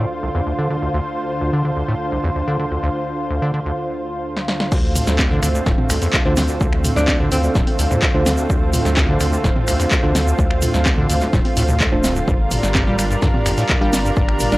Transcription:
Already playing: analog synth pad D2 D3 F4 C5
0.23 acid bass C2
0.35 acid bass E2
0.47 acid bass D2
0.59 acid bass D3
0.70 acid bass D3
0.82 acid bass D2
0.94 acid bass D2
1.41 acid bass D2
1.53 acid bass D3
1.65 acid bass D3
1.77 acid bass D2
1.88 acid bass A2
2.12 acid bass C2
2.24 acid bass E2
2.36 acid bass D2
2.48 acid bass D3
2.59 acid bass D3
2.71 acid bass D2
2.83 acid bass D2
3.30 acid bass D2
3.42 acid bass D3
3.54 acid bass D3
3.66 acid bass D2
4.37 snare
4.48 snare
4.60 snare
4.72 sub bass D2, acid bass D2, analog synth pad D3 A3 C4 F4, kick, crash, shaker
4.96 mid tom, open hi-hat, shaker
5.07 sub bass D2, snare, shaker
5.19 acid bass D2, kick, clap, high conga, shaker
5.31 acid bass D3, mid tom
5.43 sub bass D2, acid bass D3, finger snap, open hi-hat, shaker
5.55 acid bass D2, shaker
5.66 sub bass D1, acid bass A2, kick, snare, shaker
5.78 mid tom, high conga
5.90 acid bass C2, sub bass D2, finger snap, open hi-hat, shaker
6.02 acid bass E2, open hi-hat, shaker
6.13 acid bass D2, kick, clap, shaker
6.25 sub bass D2, acid bass D3, tine electric piano A3 D4 F4 C5
6.37 acid bass D3, snare, open hi-hat, high conga, shaker
6.48 acid bass D2, shaker
6.61 sub bass D2, acid bass D2, kick, shaker
6.73 finger snap
6.84 mid tom, open hi-hat, shaker
6.96 sub bass D2, alto saxophone D4, snare, shaker
7.08 acid bass D2, kick, clap, high conga, shaker
7.20 acid bass D3, mid tom
7.32 sub bass D2, acid bass D3, alto saxophone C4, open hi-hat, shaker
7.43 acid bass D2, alto saxophone C4, shaker
7.55 sub bass D1, acid bass A2, kick, snare, shaker
7.67 open hi-hat, high conga
7.79 acid bass C2, sub bass D2, open hi-hat, shaker
7.91 acid bass E2, mid tom, shaker
8.02 acid bass D2, kick, clap, shaker
8.14 sub bass D2, acid bass D3, tine electric piano A3 D4 F4 C5
8.26 acid bass D3, snare, open hi-hat, high conga, shaker
8.37 acid bass D2, shaker
8.50 sub bass D2, acid bass D2, kick, shaker
8.73 mid tom, open hi-hat, shaker
8.85 sub bass D2, snare, shaker
8.97 acid bass D2, kick, clap, high conga, shaker
9.09 acid bass D3, mid tom
9.20 sub bass D2, acid bass D3, finger snap, open hi-hat, shaker
9.33 acid bass D2, shaker
9.44 sub bass D1, acid bass A2, kick, snare, shaker
9.56 mid tom, high conga
9.68 acid bass C2, sub bass D2, finger snap, open hi-hat, shaker
9.80 acid bass E2, open hi-hat, shaker
9.91 acid bass D2, kick, clap, shaker
10.03 sub bass D2, acid bass D3, tine electric piano A3 D4 F4 C5
10.15 acid bass D3, snare, open hi-hat, high conga, shaker
10.27 acid bass D2, shaker
10.39 sub bass D2, acid bass D2, kick, shaker
10.51 finger snap
10.62 mid tom, open hi-hat, shaker
10.74 sub bass D2, snare, shaker
10.86 acid bass D2, kick, clap, high conga, shaker
10.98 acid bass D3, mid tom
11.10 sub bass D2, acid bass D3, open hi-hat, shaker
11.21 acid bass D2, snare, shaker
11.33 sub bass D1, acid bass A2, kick, snare, shaker
11.45 open hi-hat, high conga
11.57 sub bass D2, acid bass A2, open hi-hat, shaker
11.69 acid bass C2, mid tom, shaker
11.80 acid bass D2, kick, clap, shaker
11.92 sub bass D1, acid bass F2, tine electric piano A3 D4 F4 C5
12.04 acid bass C2, snare, open hi-hat, high conga, shaker
12.16 acid bass D2, shaker
12.28 sub bass G1, acid bass G2, analog synth pad G3 D4 A#4, kick, shaker
12.51 mid tom, open hi-hat, shaker
12.63 sub bass G1, snare, shaker
12.74 acid bass G2, kick, clap, high conga, shaker
12.87 acid bass G3, mid tom
12.99 sub bass G1, acid bass G3, finger snap, open hi-hat, shaker
13.10 acid bass G2, shaker
13.22 sub bass G2, acid bass D3, kick, snare, shaker
13.34 mid tom, high conga
13.46 sub bass G1, acid bass F2, finger snap, open hi-hat, shaker
13.57 acid bass A2, open hi-hat, shaker
13.69 acid bass G2, kick, clap, shaker
13.81 sub bass G1, acid bass G3, tine electric piano D4 G4 A#4 F5
13.93 acid bass G3, snare, open hi-hat, high conga, shaker
14.05 acid bass G2, shaker
14.16 sub bass G1, acid bass G2, kick, shaker
14.29 finger snap
14.40 mid tom, open hi-hat, shaker
14.52 sub bass G1, alto saxophone D4, snare, shaker

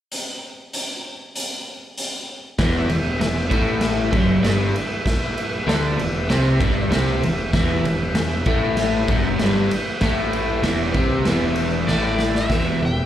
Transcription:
0.12 closed hi-hat
0.73 closed hi-hat
1.36 closed hi-hat
1.98 closed hi-hat
2.58 picked electric bass E1, overdriven electric guitar E2 E3, transistor combo organ G4 B4 E5, kick, snare, ride
2.88 picked electric bass E1, overdriven electric guitar E2, ride
3.20 picked electric bass E1, overdriven electric guitar E2, snare, ride
3.50 picked electric bass A1, overdriven electric guitar A2 A3, kick, ride
3.81 snare, ride
4.11 picked electric bass F#1, overdriven electric guitar F#2 F#3, kick, ride
4.41 picked electric bass G1, overdriven electric guitar G2 G3, snare, ride
4.76 ride
5.06 kick, snare, ride
5.38 ride
5.67 picked electric bass D2, overdriven electric guitar D3 D4, snare, ride
5.97 picked electric bass E1, overdriven electric guitar E2, ride
6.28 picked electric bass C2, overdriven electric guitar C3 C4, snare, ride
6.60 picked electric bass G1, overdriven electric guitar G2 G3, kick, ride
6.88 picked electric bass C2, overdriven electric guitar C3 C4, snare, ride
7.20 picked electric bass E1, overdriven electric guitar E2, ride
7.53 picked electric bass E1, overdriven electric guitar E2 E3, transistor combo organ B4, kick, snare, ride
7.57 transistor combo organ G4 E5
7.82 picked electric bass E1, overdriven electric guitar E2, ride
8.12 picked electric bass E1, overdriven electric guitar E2, snare, ride
8.46 picked electric bass A1, overdriven electric guitar A2 A3, kick, ride
8.77 snare, ride
9.08 picked electric bass F#1, overdriven electric guitar F#2 F#3, kick, ride
9.38 picked electric bass G1, overdriven electric guitar G2 G3, snare, ride
9.71 ride
10.01 picked electric bass A1, overdriven electric guitar A2 A3, kick, snare, ride
10.33 ride
10.62 picked electric bass E1, overdriven electric guitar E2 E3, snare, ride
10.94 picked electric bass C2, overdriven electric guitar C3 C4, kick, ride
11.25 picked electric bass E1, overdriven electric guitar E2 E3, snare, ride
11.55 ride
11.87 picked electric bass A1, overdriven electric guitar A2 A3, electric slide guitar D5, snare
12.19 snare
12.35 electric slide guitar E5, snare
12.49 picked electric bass E1, overdriven electric guitar E2 B2 E3, transistor combo organ G4 B4 E5, kick, snare, open hi-hat
12.80 picked electric bass E1, overdriven electric guitar E2 B2
12.85 electric slide guitar G5

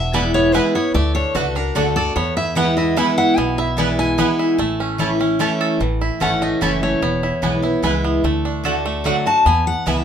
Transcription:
Already playing: upright bass E1, steel-string acoustic guitar E2 E5, five-string banjo E3
0.13 steel-string acoustic guitar E3 G#3 B3 E4 D5, mandolin B3 E4 B4 G#5, five-string banjo E4
0.34 five-string banjo B3, steel-string acoustic guitar C#5
0.53 steel-string acoustic guitar E3 G#3 B3 E4 B4, mandolin B3 E4 B4 G#5, five-string banjo E4
0.75 five-string banjo B3, steel-string acoustic guitar B3 E4 C#5
0.94 upright bass D2, steel-string acoustic guitar D3 D5, five-string banjo A3
1.15 five-string banjo D4, steel-string acoustic guitar C#5
1.34 upright bass C#2, steel-string acoustic guitar D3 A3 D4 F#4 B4, mandolin A3 F#4 D5 F#5, five-string banjo F#4
1.55 five-string banjo D4, steel-string acoustic guitar D4 F#4 A#4
1.75 upright bass D2, steel-string acoustic guitar D3 A3 D4 F#4 A4, mandolin A3 F#4 D5 F#5, five-string banjo A3
1.96 steel-string acoustic guitar D4 F#4 D5, five-string banjo A4
2.16 steel-string acoustic guitar E2 C#5, upright bass E2, five-string banjo B3
2.37 five-string banjo E4, steel-string acoustic guitar E5
2.55 steel-string acoustic guitar E3 G#3 B3 E4 F#5, mandolin B3 E4 B4 G#5, five-string banjo B3
2.77 five-string banjo E4, steel-string acoustic guitar D#5
2.96 steel-string acoustic guitar E3 G#3 B3 E4 E5, mandolin B3 E4 B4 G#5, five-string banjo E4
3.18 five-string banjo E4, steel-string acoustic guitar F#5
3.37 upright bass B1, steel-string acoustic guitar B2 G#5, five-string banjo B3
3.58 five-string banjo E4, steel-string acoustic guitar E5
3.77 steel-string acoustic guitar E3 G#3 B3 E4 D5, mandolin B3 E4 B4 G#5, five-string banjo E4
3.99 five-string banjo E4, steel-string acoustic guitar G#5
4.18 steel-string acoustic guitar E3 G#3 B3 E4, mandolin B3 E4 B4 G#5, five-string banjo B3
4.39 five-string banjo E4
4.58 upright bass A1, steel-string acoustic guitar A2, five-string banjo A3
4.80 five-string banjo C#4
4.98 steel-string acoustic guitar E3 A3 C#4 E4, mandolin A3 E4 C#5 A5, five-string banjo E4
5.19 five-string banjo C#4, steel-string acoustic guitar C#4 E4
5.39 steel-string acoustic guitar E3 A3 C#4 E4, mandolin A3 E4 C#5 A5, five-string banjo A3
5.61 five-string banjo A4
5.80 upright bass A1, steel-string acoustic guitar A2, five-string banjo E3
6.01 five-string banjo E4
6.20 upright bass G#1, steel-string acoustic guitar E3 A3 C#4 E4 F#5, mandolin A3 E4 C#5 A5, five-string banjo C#4
6.42 five-string banjo A3, steel-string acoustic guitar D#5
6.61 upright bass F#1, steel-string acoustic guitar E3 A3 C#4 E4 E5, mandolin A3 E4 C#5 A5, five-string banjo E4
6.83 five-string banjo A3, steel-string acoustic guitar C#5
7.02 upright bass E1, steel-string acoustic guitar E2, five-string banjo B3
7.23 five-string banjo E4
7.42 upright bass B1, steel-string acoustic guitar E3 G#3 B3 E4, mandolin B3 E4 B4 G#5, five-string banjo B3
7.62 steel-string acoustic guitar B3 E4, five-string banjo E4
7.82 upright bass C#2, steel-string acoustic guitar E3 G#3 B3 E4, mandolin B3 E4 B4 G#5, five-string banjo E4
8.04 five-string banjo B3
8.24 upright bass D2, steel-string acoustic guitar D3, five-string banjo A3
8.45 five-string banjo D4
8.64 steel-string acoustic guitar D3 A3 D4 F#4, mandolin A3 F#4 D5 F#5, five-string banjo A4
8.86 five-string banjo A3
9.04 steel-string acoustic guitar D3 A3 D4 F#4 F#5, five-string banjo F#3, mandolin A3 F#4 D5 F#5
9.26 steel-string acoustic guitar D4 F#4 A5, five-string banjo F#4
9.46 upright bass E2, steel-string acoustic guitar E2 G#5, five-string banjo B3
9.67 steel-string acoustic guitar F#5
9.86 upright bass C#2, steel-string acoustic guitar E3 G#3 B3 E4 E5, mandolin B3 E4 B4 G#5, five-string banjo B3

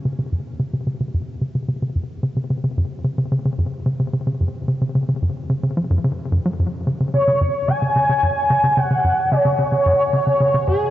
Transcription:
0.05 analog synth bass C#3
0.18 analog synth bass C#3
0.32 analog synth bass F#2
0.59 analog synth bass C#3
0.73 analog synth bass C#3
0.86 analog synth bass C#3
1.00 analog synth bass C#3
1.14 analog synth bass F#2
1.41 analog synth bass C#3
1.55 analog synth bass C#3
1.68 analog synth bass C#3
1.82 analog synth bass C#3
1.95 analog synth bass F#2
2.23 analog synth bass C#3
2.36 analog synth bass C#3
2.50 analog synth bass C#3
2.64 analog synth bass C#3
2.77 analog synth bass F#2
3.04 analog synth bass C#3
3.18 analog synth bass C#3
3.32 analog synth bass C#3
3.45 analog synth bass C#3
3.59 analog synth bass F#2
3.86 analog synth bass C#3
4.00 analog synth bass C#3
4.13 analog synth bass C#3
4.27 analog synth bass C#3
4.40 analog synth bass F#2
4.68 analog synth bass C#3
4.81 analog synth bass C#3
4.95 analog synth bass C#3
5.08 analog synth bass C#3
5.22 analog synth bass F#2
5.49 analog synth bass C#3
5.63 analog synth bass C#3
5.77 analog synth bass F3
5.90 analog synth bass F#2
6.04 analog synth bass C#3
6.32 analog synth bass F#2
6.45 analog synth bass F#3
6.59 analog synth bass F#2
6.87 analog synth bass C#3
7.00 analog synth bass C#3
7.13 analog synth bass C#3, analog synth lead C#5
7.27 analog synth bass C#3
7.41 analog synth bass F#2
7.68 analog synth bass C#3, analog synth lead G#5
7.82 analog synth bass C#3
7.96 analog synth bass C#3
8.09 analog synth bass C#3
8.23 analog synth bass F#2
8.50 analog synth bass C#3
8.64 analog synth bass C#3
8.77 analog synth bass C#3, analog synth lead F#5
8.91 analog synth bass C#3
9.04 analog synth bass F#2
9.32 analog synth bass C#3, analog synth lead C#5
9.45 analog synth bass C#3
9.59 analog synth bass C#3
9.72 analog synth bass C#3
9.86 analog synth bass F#2
10.13 analog synth bass C#3
10.27 analog synth bass C#3
10.41 analog synth bass C#3
10.55 analog synth bass C#3
10.68 analog synth bass F#2, analog synth lead G#4

